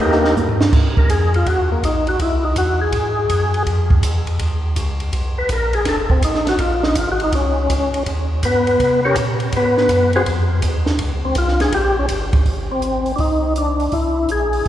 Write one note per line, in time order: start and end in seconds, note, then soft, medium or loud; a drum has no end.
0.00 0.35 D#2 medium
0.00 0.35 A#3 medium
0.00 0.34 D#4 medium
0.00 0.34 G4 medium
0.00 0.34 A#4 medium
0.12 snare soft
0.25 snare soft
0.36 0.71 G2 medium
0.36 hi-hat pedal soft
0.36 high tom soft
0.49 floor tom medium
0.61 snare medium
0.73 1.08 G#2 medium
0.73 kick medium
0.73 crash medium
0.97 1.09 A#4 medium
0.97 kick medium
1.09 1.45 F2 medium
1.09 1.33 G#4 medium
1.09 kick soft
1.09 hi-hat pedal medium
1.09 ride medium
1.34 1.47 F4 medium
1.34 ride soft
1.46 1.82 D#2 medium
1.46 1.70 F#4 medium
1.46 kick soft
1.46 ride medium
1.72 1.83 A#3 medium
1.83 2.18 A#1 medium
1.83 2.07 D#4 medium
1.83 kick soft
1.83 hi-hat pedal medium
1.83 ride medium
2.07 2.20 F#4 medium
2.07 ride soft
2.19 2.55 C2 medium
2.19 2.44 E4 medium
2.19 kick soft
2.19 ride medium
2.45 2.56 D#4 medium
2.56 2.92 E2 loud
2.56 2.81 F#4 medium
2.56 kick soft
2.56 hi-hat pedal medium
2.56 ride medium
2.81 3.63 G#4 medium
2.92 3.28 G#2 medium
2.92 kick soft
2.92 ride medium
3.29 3.65 F#2 medium
3.29 kick soft
3.29 hi-hat pedal soft
3.29 ride medium
3.54 ride soft
3.66 4.02 F2 medium
3.66 kick soft
3.66 ride medium
3.90 kick medium
4.03 4.38 E2 loud
4.03 kick soft
4.03 hi-hat pedal medium
4.03 ride medium
4.27 ride soft
4.39 4.75 D#2 medium
4.39 kick soft
4.39 ride medium
4.76 5.11 C#2 medium
4.76 kick soft
4.76 hi-hat pedal medium
4.76 ride medium
5.00 ride soft
5.12 5.35 C2 medium
5.12 kick soft
5.12 ride medium
5.36 5.43 C2 soft
5.36 5.50 B4 medium
5.49 5.85 A#1 loud
5.49 5.74 A#4 medium
5.49 kick soft
5.49 hi-hat pedal medium
5.49 ride medium
5.73 5.86 G#4 medium
5.73 ride soft
5.85 6.21 F1 medium
5.85 6.11 A4 medium
5.85 kick soft
5.85 snare soft
5.85 ride medium
6.10 6.23 C4 medium
6.10 kick medium
6.22 6.58 A1 medium
6.22 6.47 D#4 medium
6.22 kick soft
6.22 hi-hat pedal medium
6.22 ride medium
6.35 snare soft
6.47 6.60 F#4 loud
6.47 snare soft
6.47 ride soft
6.59 6.95 A#1 medium
6.59 6.83 F4 medium
6.59 kick soft
6.59 ride medium
6.83 6.96 D#4 medium
6.83 snare medium
6.95 7.31 G#1 loud
6.95 7.09 F4 medium
6.95 kick soft
6.95 hi-hat pedal medium
6.95 ride medium
7.12 7.22 F#4 medium
7.20 7.34 D#4 medium
7.20 ride soft
7.32 7.68 C2 medium
7.32 8.03 C#4 medium
7.32 kick soft
7.32 ride medium
7.70 7.92 C#2 loud
7.70 kick soft
7.70 hi-hat pedal medium
7.70 ride medium
7.93 7.99 C#2 soft
7.93 ride soft
8.06 8.41 D#2 medium
8.06 kick soft
8.06 ride medium
8.43 8.78 G2 loud
8.43 9.01 B3 medium
8.43 9.00 B4 medium
8.43 kick soft
8.43 hi-hat pedal medium
8.43 ride medium
8.67 ride soft
8.79 9.15 C3 medium
8.79 kick soft
8.79 ride medium
9.05 9.17 C#4 medium
9.05 9.16 G4 medium
9.05 9.16 A#4 medium
9.05 9.16 C#5 medium
9.15 9.51 A#2 medium
9.15 kick soft
9.15 hi-hat pedal medium
9.15 ride medium
9.40 ride soft
9.52 9.88 G#2 medium
9.52 10.11 B4 medium
9.52 kick soft
9.52 ride medium
9.57 10.11 B3 medium
9.77 snare soft
9.89 10.24 F#2 loud
9.89 kick soft
9.89 hi-hat pedal medium
9.89 ride medium
10.13 10.23 C4 medium
10.13 10.22 F#4 medium
10.13 10.22 G#4 medium
10.13 10.23 C5 loud
10.13 ride soft
10.25 10.61 F2 medium
10.25 kick soft
10.25 ride medium
10.62 10.98 D#2 medium
10.62 kick soft
10.62 hi-hat pedal medium
10.62 ride medium
10.86 snare medium
10.99 11.34 C#2 medium
10.99 kick soft
10.99 ride medium
11.25 11.36 C4 medium
11.35 11.71 C2 loud
11.35 11.60 F4 medium
11.35 kick soft
11.35 hi-hat pedal medium
11.35 ride medium
11.48 snare soft
11.60 11.73 G#4 loud
11.60 snare soft
11.60 ride medium
11.72 12.08 A#1 medium
11.72 11.97 G4 medium
11.72 kick soft
11.72 ride medium
11.99 12.06 C#4 medium
12.08 12.44 G1 loud
12.08 kick soft
12.08 hi-hat pedal medium
12.08 ride medium
12.33 kick medium
12.33 ride soft
12.45 13.15 G#1 medium
12.45 kick soft
12.45 open hi-hat soft
12.72 13.12 C4 medium
12.82 closed hi-hat medium
13.06 open hi-hat soft
13.16 13.88 C2 medium
13.16 13.20 D4 medium
13.16 kick soft
13.16 open hi-hat soft
13.20 13.53 D#4 medium
13.56 13.94 D4 medium
13.56 closed hi-hat soft
13.80 open hi-hat soft
13.92 14.26 C2 medium
13.92 14.30 E4 medium
13.92 kick soft
13.92 open hi-hat soft
14.27 14.62 A#1 medium
14.27 closed hi-hat soft
14.32 14.67 G#4 loud
14.53 open hi-hat soft